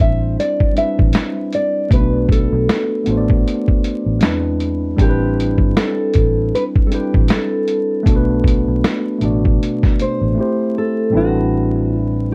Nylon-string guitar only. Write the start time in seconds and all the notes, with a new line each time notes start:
0.01 E5
0.40 D5
0.78 E5
1.55 D5
1.93 B4
2.32 A4
5.01 G4
5.78 A4
6.55 B4
6.87 A4
6.94 G4
7.32 A4
10.02 C5
10.78 A4
11.17 F#4
11.98 E4